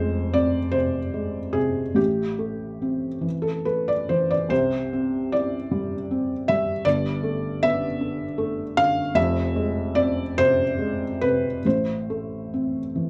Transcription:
Already playing: F1 F2 G#3 C5
0.34 C4 D5
0.72 C3 C5
1.14 G#3
1.53 C3 G#4
1.95 A1 A2 G4
2.39 A3
2.82 C4
3.21 E3
3.42 A4
3.65 A3 B4
3.88 D5
4.09 E3 C5
4.31 D5
4.49 C2 C3 C5
4.93 C4
5.32 E4 D5
5.71 G3
6.11 C4
6.48 G3 E5
6.85 G1 G2 D5
7.23 A3
7.63 B3 E5
8.01 D3
8.38 A3
8.77 D3 F5
9.15 F1 F2 E5
9.56 G#3
9.95 C4 D5
10.38 C3 C5
10.79 G#3
11.21 C3 B4
11.65 A1 A2 C5
12.10 A3
12.54 C4
12.96 E3

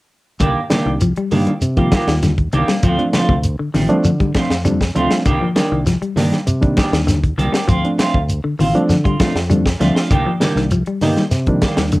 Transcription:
0.40 C2 D3 D#3 A#3 D4 G4, kick, closed hi-hat, shekere
0.70 D#3 G3 A#3 D4 G4, muted fingered electric bass stroke, snare, closed hi-hat, high conga, low conga, shekere
0.86 C2 D#3
1.01 F3, closed hi-hat, shekere
1.16 G3, muted fingered electric bass stroke, closed hi-hat
1.31 G2 D#3 G3 A#3 D4 G4, open hi-hat, low conga, shekere
1.47 closed hi-hat, high conga
1.61 C3, closed hi-hat, shekere
1.77 D#3 F3 G3 A#3 D4 F4 G4, kick, closed hi-hat
1.92 D#3 A#3 D4 G4, kick, snare, closed hi-hat, high conga, shekere
2.07 D#2 D#3, snare, closed hi-hat
2.22 D3, snare, closed hi-hat, high conga, shekere
2.38 kick, closed hi-hat
2.53 C2 D#3 A#3 D4 G4, closed hi-hat, low conga, shekere
2.68 G3 A#3 D4, snare, closed hi-hat, high conga
2.83 D2 F3 A3 C4 F4, kick, closed hi-hat, shekere
2.98 F3 A3 C4 D4, closed hi-hat
3.13 F3 A3 C4 F4, muted fingered electric bass stroke, snare, closed hi-hat, high conga, low conga, shekere
3.29 D2 C3, kick
3.44 closed hi-hat, shekere
3.59 D3, muted fingered electric bass stroke
3.74 A1 D#3 F3 A3 C4 D4, snare, open hi-hat, low conga, shekere
3.89 F3 A3 C4 D4, closed hi-hat, high conga
4.04 D3 F3, closed hi-hat, shekere
4.20 G3, kick, closed hi-hat, high conga
4.35 F3 A3 C4 D4 F4, kick, snare, closed hi-hat, high conga, shekere
4.50 F2, snare, closed hi-hat
4.65 F3 G3 A3 C4 D4, closed hi-hat, high conga, low conga, shekere
4.81 kick, snare, closed hi-hat
4.95 D2 F3 A3 C4 D4 F4, closed hi-hat, low conga, shekere
5.11 snare, closed hi-hat, high conga
5.25 C2 D3 D#3 A#3 D4 G4, kick, closed hi-hat, shekere
5.41 F3
5.55 D#3 G3 A#3 D4 G4, muted fingered electric bass stroke, snare, closed hi-hat, high conga, shekere
5.72 C2 D#3
5.86 F3, snare, closed hi-hat, shekere
6.01 G3, muted fingered electric bass stroke, closed hi-hat
6.16 G2 D#3 G3 A#3 D4 G4, snare, open hi-hat, low conga, shekere
6.32 snare, closed hi-hat, high conga
6.47 C3, closed hi-hat, shekere
6.61 D#3 G3 A#3 D4, kick, closed hi-hat, high conga
6.77 D#3 D4 G4, kick, snare, closed hi-hat, high conga, shekere
6.92 D#2 D#3, snare, closed hi-hat
7.07 D3, snare, closed hi-hat, high conga, low conga, shekere
7.24 kick, closed hi-hat
7.38 C2 D#3 A#3 D4 G4, muted clean electric guitar stroke, closed hi-hat, high conga, low conga, shekere
7.53 G3 A#3 D4 G4, snare, closed hi-hat
7.68 D2 F3 C4 F4, muted clean electric guitar stroke, kick, closed hi-hat, shekere
7.84 F3 A3 C4 D4, closed hi-hat
7.98 A3 C4 F4, muted fingered electric bass stroke, snare, closed hi-hat, high conga, shekere
8.14 D2, kick
8.29 closed hi-hat, shekere
8.44 D3, muted fingered electric bass stroke
8.59 A1 D#3 C4 F4, muted clean electric guitar stroke, open hi-hat, low conga, shekere
8.75 F3 A3 C4 D4, closed hi-hat, high conga
8.89 D3 F3, snare, closed hi-hat, shekere
9.04 G3 C4 F4, kick, closed hi-hat
9.20 F3 A3 C4 D4 F4, kick, snare, closed hi-hat, high conga, shekere
9.35 F2, snare, closed hi-hat
9.50 F3 G3 A3 C4 D4, closed hi-hat, high conga, low conga, shekere
9.66 kick, snare, closed hi-hat
9.80 D2 F3 A3 C4 D4 F4, snare, closed hi-hat, high conga, low conga, shekere
9.95 C4 F4, muted fingered electric bass stroke, snare, closed hi-hat
10.10 C2 D3 D#3 A#3 D4 G4, kick, closed hi-hat, shekere
10.26 F3
10.40 D#3 G3 A#3 D4 G4, muted fingered electric bass stroke, snare, closed hi-hat, high conga, low conga, shekere
10.56 C2 D#3, snare
10.71 F3, closed hi-hat, shekere
10.86 G3, closed hi-hat
11.01 G2 D#3 G3 A#3 D4 D#4 G4, snare, open hi-hat, low conga, shekere
11.16 snare, closed hi-hat, high conga
11.31 C3, snare, closed hi-hat, shekere
11.47 D#3 F3 G3 A#3 D4, kick, closed hi-hat
11.62 D#3 A#3 D4 G4, kick, snare, closed hi-hat, high conga, shekere
11.77 D#2 D#3, snare, closed hi-hat, high conga
11.92 D3, closed hi-hat, high conga, shekere

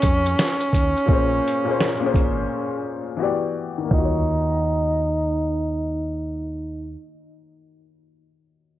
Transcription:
Already playing: D#3 A#3 C#4 F4 F#4 G#4
0.02 F2, kick, closed hi-hat, shaker
0.26 shaker
0.39 snare, shaker
0.60 shaker
0.73 D#2, kick, closed hi-hat, shaker
0.97 shaker
1.06 A#1 A#2 A#3 C#4, kick
1.11 G#4 C5
1.48 closed hi-hat
1.64 A#2 A#3 C#4
1.69 G#4 C5
1.80 snare
1.99 A#2 A#3 C#4
2.05 G#4 C5
2.14 G#1, kick, closed hi-hat
3.17 E3 B3 F#4
3.22 G4 D5
3.78 D#3
3.84 A#3
3.91 D#2 D#4 F4, kick, floor tom
3.98 F#4
4.05 C#5

